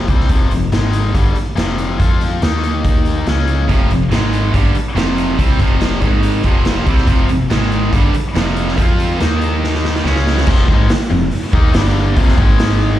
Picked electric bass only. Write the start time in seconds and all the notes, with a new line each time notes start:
0.08 C2
0.30 F1
0.50 F1
0.72 G#1
1.15 G1
1.57 F1
1.99 F2
2.42 D#2
3.27 C#2
3.69 F1
3.90 F1
4.10 G#1
4.54 G1
4.95 F1
5.39 C2
5.60 F1
6.02 G#1
6.44 F1
6.86 C2
7.07 F1
7.29 F1
7.50 G#1
7.93 G1
8.35 F1
8.77 F2
9.20 D#2
10.05 C#2
10.47 F1
10.68 G#1
11.11 F1
11.53 D#2
11.74 G1
12.17 F1
12.38 G#1